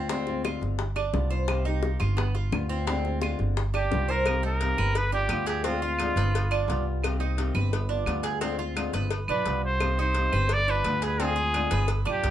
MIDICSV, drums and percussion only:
0, 0, Header, 1, 2, 480
1, 0, Start_track
1, 0, Key_signature, -3, "minor"
1, 0, Tempo, 346821
1, 130, Time_signature, 4, 2, 24, 8
1, 17030, End_track
2, 0, Start_track
2, 0, Title_t, "Drums"
2, 131, Note_on_c, 9, 60, 67
2, 269, Note_off_c, 9, 60, 0
2, 372, Note_on_c, 9, 60, 35
2, 510, Note_off_c, 9, 60, 0
2, 619, Note_on_c, 9, 60, 58
2, 627, Note_on_c, 9, 75, 67
2, 758, Note_off_c, 9, 60, 0
2, 765, Note_off_c, 9, 75, 0
2, 867, Note_on_c, 9, 60, 32
2, 1005, Note_off_c, 9, 60, 0
2, 1090, Note_on_c, 9, 60, 64
2, 1228, Note_off_c, 9, 60, 0
2, 1330, Note_on_c, 9, 60, 37
2, 1335, Note_on_c, 9, 75, 66
2, 1469, Note_off_c, 9, 60, 0
2, 1473, Note_off_c, 9, 75, 0
2, 1572, Note_on_c, 9, 60, 32
2, 1572, Note_on_c, 9, 61, 83
2, 1711, Note_off_c, 9, 60, 0
2, 1711, Note_off_c, 9, 61, 0
2, 2048, Note_on_c, 9, 60, 61
2, 2057, Note_on_c, 9, 75, 65
2, 2186, Note_off_c, 9, 60, 0
2, 2195, Note_off_c, 9, 75, 0
2, 2290, Note_on_c, 9, 60, 32
2, 2428, Note_off_c, 9, 60, 0
2, 2527, Note_on_c, 9, 60, 62
2, 2665, Note_off_c, 9, 60, 0
2, 2772, Note_on_c, 9, 75, 70
2, 2777, Note_on_c, 9, 60, 35
2, 2910, Note_off_c, 9, 75, 0
2, 2915, Note_off_c, 9, 60, 0
2, 3019, Note_on_c, 9, 60, 67
2, 3157, Note_off_c, 9, 60, 0
2, 3253, Note_on_c, 9, 60, 38
2, 3391, Note_off_c, 9, 60, 0
2, 3494, Note_on_c, 9, 60, 33
2, 3494, Note_on_c, 9, 61, 88
2, 3498, Note_on_c, 9, 75, 69
2, 3632, Note_off_c, 9, 60, 0
2, 3632, Note_off_c, 9, 61, 0
2, 3636, Note_off_c, 9, 75, 0
2, 3978, Note_on_c, 9, 60, 72
2, 4117, Note_off_c, 9, 60, 0
2, 4218, Note_on_c, 9, 60, 34
2, 4357, Note_off_c, 9, 60, 0
2, 4450, Note_on_c, 9, 60, 60
2, 4469, Note_on_c, 9, 75, 69
2, 4588, Note_off_c, 9, 60, 0
2, 4608, Note_off_c, 9, 75, 0
2, 4689, Note_on_c, 9, 60, 33
2, 4828, Note_off_c, 9, 60, 0
2, 4941, Note_on_c, 9, 60, 65
2, 5080, Note_off_c, 9, 60, 0
2, 5176, Note_on_c, 9, 60, 34
2, 5188, Note_on_c, 9, 75, 68
2, 5315, Note_off_c, 9, 60, 0
2, 5326, Note_off_c, 9, 75, 0
2, 5418, Note_on_c, 9, 60, 37
2, 5418, Note_on_c, 9, 61, 84
2, 5557, Note_off_c, 9, 60, 0
2, 5557, Note_off_c, 9, 61, 0
2, 5890, Note_on_c, 9, 56, 107
2, 5906, Note_on_c, 9, 75, 70
2, 6029, Note_off_c, 9, 56, 0
2, 6045, Note_off_c, 9, 75, 0
2, 6376, Note_on_c, 9, 56, 75
2, 6514, Note_off_c, 9, 56, 0
2, 6621, Note_on_c, 9, 75, 67
2, 6759, Note_off_c, 9, 75, 0
2, 6854, Note_on_c, 9, 56, 104
2, 6993, Note_off_c, 9, 56, 0
2, 7320, Note_on_c, 9, 56, 77
2, 7337, Note_on_c, 9, 75, 66
2, 7458, Note_off_c, 9, 56, 0
2, 7475, Note_off_c, 9, 75, 0
2, 7572, Note_on_c, 9, 56, 74
2, 7710, Note_off_c, 9, 56, 0
2, 7806, Note_on_c, 9, 56, 109
2, 7944, Note_off_c, 9, 56, 0
2, 8284, Note_on_c, 9, 75, 72
2, 8297, Note_on_c, 9, 56, 78
2, 8422, Note_off_c, 9, 75, 0
2, 8436, Note_off_c, 9, 56, 0
2, 8542, Note_on_c, 9, 56, 67
2, 8681, Note_off_c, 9, 56, 0
2, 8790, Note_on_c, 9, 56, 105
2, 8929, Note_off_c, 9, 56, 0
2, 9020, Note_on_c, 9, 75, 78
2, 9159, Note_off_c, 9, 75, 0
2, 9269, Note_on_c, 9, 56, 66
2, 9407, Note_off_c, 9, 56, 0
2, 9738, Note_on_c, 9, 75, 67
2, 9746, Note_on_c, 9, 56, 103
2, 9876, Note_off_c, 9, 75, 0
2, 9885, Note_off_c, 9, 56, 0
2, 10216, Note_on_c, 9, 56, 72
2, 10355, Note_off_c, 9, 56, 0
2, 10449, Note_on_c, 9, 75, 65
2, 10588, Note_off_c, 9, 75, 0
2, 10698, Note_on_c, 9, 56, 105
2, 10837, Note_off_c, 9, 56, 0
2, 11160, Note_on_c, 9, 75, 68
2, 11172, Note_on_c, 9, 56, 69
2, 11298, Note_off_c, 9, 75, 0
2, 11311, Note_off_c, 9, 56, 0
2, 11401, Note_on_c, 9, 56, 72
2, 11539, Note_off_c, 9, 56, 0
2, 11645, Note_on_c, 9, 56, 107
2, 11783, Note_off_c, 9, 56, 0
2, 12132, Note_on_c, 9, 56, 75
2, 12134, Note_on_c, 9, 75, 71
2, 12271, Note_off_c, 9, 56, 0
2, 12273, Note_off_c, 9, 75, 0
2, 12370, Note_on_c, 9, 56, 68
2, 12508, Note_off_c, 9, 56, 0
2, 12602, Note_on_c, 9, 56, 110
2, 12741, Note_off_c, 9, 56, 0
2, 12846, Note_on_c, 9, 75, 72
2, 12985, Note_off_c, 9, 75, 0
2, 13086, Note_on_c, 9, 56, 71
2, 13225, Note_off_c, 9, 56, 0
2, 13570, Note_on_c, 9, 56, 95
2, 13571, Note_on_c, 9, 75, 73
2, 13708, Note_off_c, 9, 56, 0
2, 13709, Note_off_c, 9, 75, 0
2, 14041, Note_on_c, 9, 56, 68
2, 14179, Note_off_c, 9, 56, 0
2, 14290, Note_on_c, 9, 75, 59
2, 14428, Note_off_c, 9, 75, 0
2, 14520, Note_on_c, 9, 56, 104
2, 14658, Note_off_c, 9, 56, 0
2, 15009, Note_on_c, 9, 56, 74
2, 15014, Note_on_c, 9, 75, 64
2, 15147, Note_off_c, 9, 56, 0
2, 15152, Note_off_c, 9, 75, 0
2, 15254, Note_on_c, 9, 56, 75
2, 15392, Note_off_c, 9, 56, 0
2, 15497, Note_on_c, 9, 56, 100
2, 15635, Note_off_c, 9, 56, 0
2, 15973, Note_on_c, 9, 56, 72
2, 15980, Note_on_c, 9, 75, 69
2, 16112, Note_off_c, 9, 56, 0
2, 16119, Note_off_c, 9, 75, 0
2, 16204, Note_on_c, 9, 56, 78
2, 16343, Note_off_c, 9, 56, 0
2, 16442, Note_on_c, 9, 56, 111
2, 16581, Note_off_c, 9, 56, 0
2, 16705, Note_on_c, 9, 75, 68
2, 16844, Note_off_c, 9, 75, 0
2, 16934, Note_on_c, 9, 56, 73
2, 17030, Note_off_c, 9, 56, 0
2, 17030, End_track
0, 0, End_of_file